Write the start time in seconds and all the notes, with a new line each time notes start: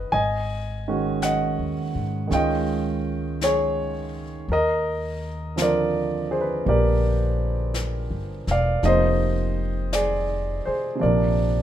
Already playing: C#4 F#4 B4 D#5
0.11 G#1 D#5 G#5, brush sweep
0.88 D#3 G#3 C#4 F#4
1.22 D#5 F#5, brush sweep, snare, hi-hat pedal
1.59 D#2
1.95 G#2
2.27 C#2 D#3 G#3 C#4, brush sweep, snare
2.33 F4 D#5 G5
3.41 G#4 C#5, brush sweep, snare, hi-hat pedal
4.48 D#2 A#4, brush sweep
4.53 D#5
5.56 D3 F3 C4 F4, brush sweep, snare, hi-hat pedal
5.62 A#4 D5
6.31 G#4 C5
6.41 B4
6.65 A#1 A#3 D4 G4, brush sweep
6.69 A#4 D5
7.74 brush sweep, snare, hi-hat pedal
8.10 G1
8.47 E1 F5, snare
8.51 D5
8.83 F1 C3 F3 A#3 D#4 D#5, brush sweep, snare
8.87 C5
9.93 G#4 D5, brush sweep, snare, hi-hat pedal
10.65 G#4 C5, muted upright bass stroke
10.95 C3 F3
11.01 A#1 A#3 A#4 D5, brush sweep
11.06 D4